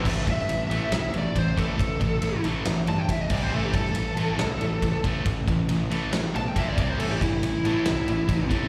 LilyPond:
<<
  \new Staff \with { instrumentName = "Lead electric guitar" } { \time 4/4 \key a \minor \tempo 4 = 138 r8 e''2 d''8 c''8 a'8~ | a'4. r4 a''16 g''16 e''16 dis''16 d''16 c''16 | a'16 g'16 a'2. r8 | r2 r8 a''16 g''16 e''16 d''16 d''16 c''16 |
a'16 g'16 e'2. r8 | }
  \new Staff \with { instrumentName = "Distorted electric guitar" } { \clef bass \time 4/4 \key a \minor <a, e a>8 <a, e>8 <a, e>8 <a, e a>8 <a, e>8 <a, e>8 <a, e>8 <a, e a>8 | <a, e>8 <a, e>8 <a, e>8 <a, e a>8 <a, e>8 <a, e>8 <a, e>8 <c g c'>8 | <a, e a>8 <a, e>8 <a, e>8 <a, e a>8 <a, e>8 <a, e>8 <a, e>8 <a, e a>8 | <a, e>8 <a, e>8 <a, e>8 <a, e a>8 <a, e>8 <a, e>8 <bes, f bes>8 <c g c'>8 |
<a, e a>8 <a, e>8 <a, e>8 <a, e a>8 <a, e>8 <a, e>8 <a, e>8 <a, e a>8 | }
  \new Staff \with { instrumentName = "Overdriven electric guitar" } { \clef bass \time 4/4 \key a \minor <a, e a>8 <a, e>8 <a, e>8 <a, e a>8 <a, e>8 <a, e>8 <a, e>8 <a, e a>8 | <a, e>8 <a, e>8 <a, e>8 <a, e a>8 <a, e>8 <a, e>8 <a, e>8 <c g c'>8 | <a, e a>8 <a, e>8 <a, e>8 <a, e a>8 <a, e>8 <a, e>8 <a, e>8 <a, e a>8 | <a, e>8 <a, e>8 <a, e>8 <a, e a>8 <a, e>8 <a, e>8 <bes, f bes>8 <c g c'>8 |
<a, e a>8 <a, e>8 <a, e>8 <a, e a>8 <a, e>8 <a, e>8 <a, e>8 <a, e a>8 | }
  \new Staff \with { instrumentName = "Fingered electric bass" } { \clef bass \time 4/4 \key a \minor a,,8 g,8 a,,8 a,,8 c,8 a,,8 a,,8 a,,8 | a,,8 a,,8 a,,8 a,,8 a,,8 g,8 a,,8 c,8 | a,,8 g,8 a,,8 a,,8 c,8 a,,8 a,,8 a,,8 | a,,8 a,,8 a,,8 a,,8 a,,8 b,,8 bes,,8 c,8 |
a,,8 g,8 a,,8 a,,8 c,8 a,,8 a,,8 a,,8 | }
  \new DrumStaff \with { instrumentName = "Drums" } \drummode { \time 4/4 <cymc bd>8 <bd cymr>16 sn16 cymr8 cymr8 <cymr sn>8 cymr8 <bd cymr>8 <bd cymr>8 | <bd cymr>8 <bd cymr>8 cymr8 cymr8 <cymr sn>8 cymr8 <bd cymr>8 <cymc bd>8 | r8 <bd cymr>16 sn16 cymr8 cymr8 <cymr sn>8 cymr8 <bd cymr>8 <bd cymr>8 | <bd cymr>8 <bd cymr>8 cymr8 cymr8 <cymr sn>8 cymr8 <bd cymr>8 <bd cymr>8 |
cymc8 <bd cymr>8 cymr8 cymr8 <cymr sn>8 cymr8 <bd cymr>8 <bd cymr>8 | }
>>